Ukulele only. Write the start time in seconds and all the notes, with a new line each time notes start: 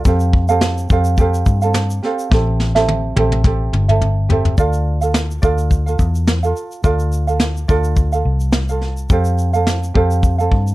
0.05 C4 G4 A4 F5
0.49 C4 G4 A4 F5
0.90 C4 G4 A4 F5
1.18 C4 G4 A4 F5
1.62 C4 A4 F5
2.03 C4 G4 A4 F5
2.31 C4 G4 A4 E5
2.75 C4 G4 A4 E5
3.16 C4 G4 A4 E5
3.44 C4 G4 A4 E5
3.88 C4 A4 E5
4.29 C4 G4 A4 E5
4.58 F4 A4 D5 F5
5.01 F4 A4 F5
5.42 F4 A4 D5 F5
5.86 F4 A4 F5
6.43 F4 A4 F5
6.84 F4 A4 D5 F5
7.27 F4 A4 F5
7.68 F4 A4 D5 F5
8.12 F4 A4 F5
8.69 F4 A4 F5
9.10 C4 G4 A4 F5
9.53 C4 A4 F5
9.94 C4 G4 A4 F5
10.38 C4 A4 F5